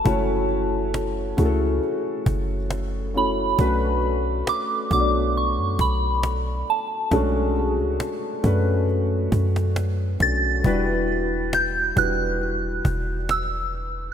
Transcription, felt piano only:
X:1
M:4/4
L:1/8
Q:"Swing 16ths" 1/4=68
K:Bm
V:1 name="Felt piano"
[A,CEFc]2 z [A,CEF^GA]3 z [A,CEFc] | [A,CDFB]2 z [A,B,DFcd]3 z2 | [^G,A,CDF]2 z [A,CDFB]3 z [A,CDFA] | [G,DEFB]2 z [G,DEFB]3 z2 |]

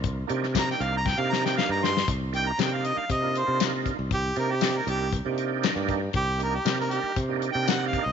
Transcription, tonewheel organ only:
X:1
M:4/4
L:1/16
Q:1/4=118
K:Cm
V:1 name="Tonewheel organ"
z2 [B,DEG] z [B,DEG]4 z [B,DEG]6 z | z2 [B,DEG] z [B,DEG]4 z [B,DEF]6 z | z2 [B,DEG] z [B,DEG]4 z [B,DEG]6 z | z2 [B,DEG] z [B,DEB]4 z [B,DEG]6 z |]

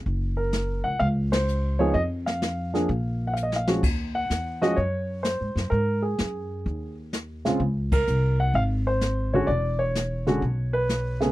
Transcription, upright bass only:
X:1
M:4/4
L:1/8
Q:"Swing" 1/4=127
K:Db
V:1 name="Upright bass" clef=bass
G,,,3 D,, D,,4 | F,,4 B,,,4 | E,,2 _F,,2 G,,2- (3G,, A,, G,, | A,,2 G,,2 E,,4 |
D,,2 C,,2 A,,,4 | =E,,,4 =B,,,4 |]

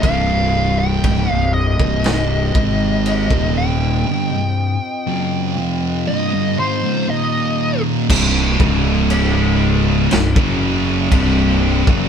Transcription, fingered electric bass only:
X:1
M:4/4
L:1/16
Q:1/4=60
K:Cm
V:1 name="Fingered electric bass" clef=bass
C,,,4 _D,,, C,,,2 C,,,3 A,,,3 E,,,3 | z16 | C,,,2 _D,,,6 C,,, ^F,,,3 C,,,3 F,,, |]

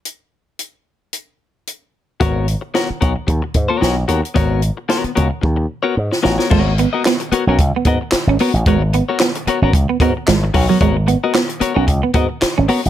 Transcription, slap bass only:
X:1
M:4/4
L:1/16
Q:"Swing 16ths" 1/4=112
K:G#m
V:1 name="Slap bass" clef=bass
z16 | G,,,3 z3 B,,, z D,, z G,, z B,,,2 D,, z | G,,,3 z3 C,, z D,,2 z2 G,, z =A,,, z | G,,,3 z4 B,,, C,, z G,, z2 G,,, z =A,,, |
G,,,3 z4 G,,, C,, z G,, z G,,,2 B,,, z | G,,,3 z4 B,,, C,, z G,, z2 G,,, z =A,,, |]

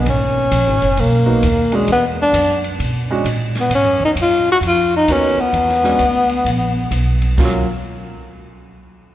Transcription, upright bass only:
X:1
M:4/4
L:1/8
Q:"Swing" 1/4=131
K:Abdor
V:1 name="Upright bass" clef=bass
A,,,2 (3B,,, A,,, G,,, C,,2 E,,2 | =E,,2 ^F,,2 =B,,2 _B,,2 | (3A,, G,, E,, G,,2 F,,2 E,, z | =E,,2 =D,,2 B,,,2 =B,,,2 |
E,, z6 z |]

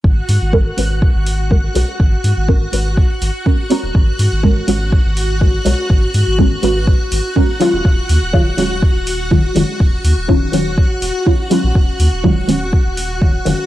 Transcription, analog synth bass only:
X:1
M:4/4
L:1/16
Q:"Swing 16ths" 1/4=123
K:D#phr
V:1 name="Analog synth bass" clef=bass
G,,, z G,, G,,,2 z G,,,2 z G,,,4 z B,,, z | G,,, z G,, G,,,2 z G,,,2 z2 G,,, z4 D,,, | G,,, z G,, G,,,2 z G,,,2 z G,,,4 z B,,, z | G,,, z G,, G,,,2 z G,,,2 z2 G,,, z4 D,,, |
D,,, z D,, D,,,2 z D,,,2 z D,,,4 z F,,, z | D,,, z D,, D,,,2 z D,,,2 z2 D,,, z4 A,,, | D,,, z D,, D,,,2 z D,,,2 z D,,,4 z F,,, z |]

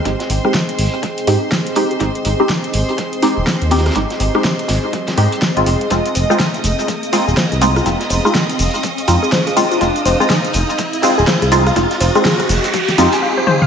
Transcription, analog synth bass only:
X:1
M:4/4
L:1/16
Q:"Swing 16ths" 1/4=123
K:Ab
V:1 name="Analog synth bass" clef=bass
A,,, z A,,, z3 A,,, z3 A,, z4 z | A,,, z A,,, z3 A,,, z4 E,,, z E,,2 z | A,,, z A,,, z3 A,,, z3 A,, z2 A,,, F,,, z | F,,, z F,,, z3 F,,, z4 E,,, z C,,2 z |
F,,, z F,,, z3 F,,, z3 F,, z4 z | F,,, z F,,, z3 F,,, z4 E,,, z C,,2 z | F,,, z F,,, z3 F,,, z3 F,, z4 z |]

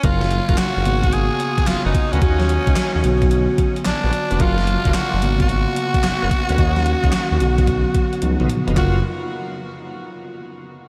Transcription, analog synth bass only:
X:1
M:4/4
L:1/16
Q:"Swing 16ths" 1/4=110
K:F#
V:1 name="Analog synth bass" clef=bass
F,,,3 E,,, z F,,, G,,,4 z2 F,,, F,,, z =D,, | D,,3 C,, z D,, B,,,4 z2 A,,, A,,, z E,,, | F,,,3 E,,, z F,,, G,,,4 z2 F,,, F,,, z =D,, | D,,3 C,, z D,, B,,,4 z2 C,, B,,, z E,,, |
F,,,2 z12 z2 |]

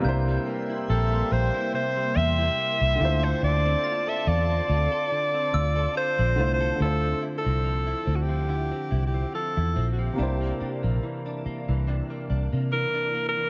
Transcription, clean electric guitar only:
X:1
M:4/4
L:1/16
Q:"Swing 16ths" 1/4=71
K:Dm
V:1 name="Clean electric guitar"
C, G, B, E B, G, B, E C, G, B, E B, G, D, A | D, C F A F C F A D, C F A F C F A | [D,E] C E C F, E C F, [D,E] C E C F, E C F, | [C,D] B, D B, E, D B, E, [C,D] B, D B, E, D B, E, |]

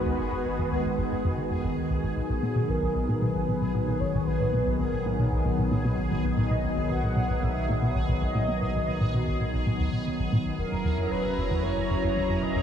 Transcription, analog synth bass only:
X:1
M:4/4
L:1/16
Q:1/4=114
K:B
V:1 name="Analog synth bass" clef=bass
D,, G,,, G,,, G,,, F,, D,, G,,, G,,, G,,, F,, D,, F,, G,,, D,, C,, G,,, | B,,, B,,, A,, B,, B,,, B,,, B,,, A,, B,, B,,, B,,, B,,, A,, B,, B,,, B,,, | B,,, A,, B,, B,,, B,,, B,,, A,, B,, B,,, B,,, B,,, A,, B,, B,,, B,,, B,,, | A,, B,, B,,, B,,, B,,, A,, B,, B,,, B,,, B,,, A,, B,, B,,, B,,, B,,, A,, |
B,, B,,, B,,, B,,, A,, B,, B,,, B,,, B,,, A,, D,, B,, D,, B,,, A,, B,,, | F,,, F,,, E,, F,, F,,, F,,, F,,, E,, F,, F,,, F,,, F,,, E,, F,, F,,, F,,, |]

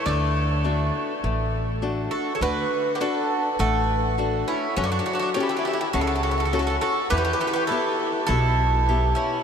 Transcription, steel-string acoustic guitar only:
X:1
M:4/4
L:1/8
Q:1/4=102
K:D
V:1 name="Steel-string acoustic guitar"
D,2 [DFA]2 A,2 [DFA]2 | D,2 [DFA]2 A,2 [DFA]2 | F,2 [CFA]2 C,2 [CFA]2 | E,2 [B,EG]2 B,,2 [B,EG]2 |]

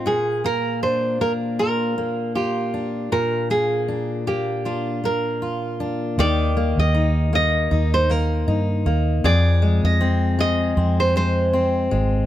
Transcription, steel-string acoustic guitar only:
X:1
M:4/4
L:1/8
Q:"Swing 16ths" 1/4=78
K:Eb
V:1 name="Steel-string acoustic guitar"
B,, B, D B, F B, F D | B,, B, D B, F B, F D | [E,G] B, E B, E B, E B, | [F,,A] A, C A, C A, C A, |]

